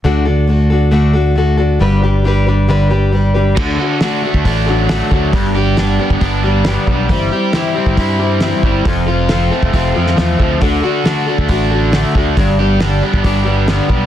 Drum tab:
CC |----------------|----------------|x---------------|----------------|
HH |----------------|----------------|----o---o---o---|o---o---o---o---|
SD |----------------|----------------|----o-------o---|----o-------o---|
BD |----------------|----------------|o------oo-----o-|o------oo-----o-|

CC |----------------|----------------|----------------|----------------|
HH |o---o---o---o---|o---o---o---o---|o---o---o---o---|o---o---o---o---|
SD |----o-------o---|----o------oo---|----o-------o---|----o-------o---|
BD |o------oo-----o-|o------oo-----o-|o------oo-----o-|o------oo-----o-|